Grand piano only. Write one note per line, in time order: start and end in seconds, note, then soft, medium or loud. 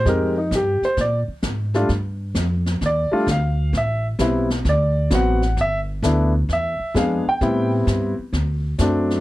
0.06 0.34 G#3 medium
0.06 0.34 C4 medium
0.06 0.34 D#4 medium
0.06 0.34 G4 medium
0.06 0.37 A#4 medium
0.38 0.52 D#4 medium
0.55 0.84 G4 medium
0.85 0.98 C5 medium
1.01 1.18 D5 medium
1.75 1.88 G3 medium
1.75 1.88 A3 medium
1.75 1.88 D4 medium
1.75 1.88 F4 medium
2.86 3.26 D5 medium
3.12 3.25 G3 medium
3.12 3.25 A3 medium
3.12 3.26 D4 medium
3.12 3.26 F4 medium
3.31 3.72 F5 medium
3.77 4.05 E5 medium
4.19 4.47 G3 medium
4.19 4.48 B3 medium
4.19 4.48 C4 medium
4.19 4.48 E4 medium
4.69 5.10 D5 medium
5.11 5.39 F#3 medium
5.11 5.39 B3 medium
5.11 5.40 C4 medium
5.11 5.40 F#4 medium
5.11 5.56 F#5 loud
5.61 5.78 E5 loud
6.03 6.31 A3 medium
6.03 6.31 B3 medium
6.03 6.31 D4 medium
6.03 6.32 E4 medium
6.53 6.94 E5 medium
6.95 7.23 G#3 medium
6.95 7.23 B3 medium
6.95 7.23 D4 medium
6.95 7.24 G#4 medium
6.95 7.27 F5 medium
7.29 7.70 G5 medium
7.41 8.12 G3 medium
7.41 8.12 B3 medium
7.41 8.12 C4 medium
7.41 8.13 E4 medium
8.79 9.20 F#3 medium
8.79 9.20 A3 medium
8.79 9.20 C4 medium
8.79 9.20 D4 medium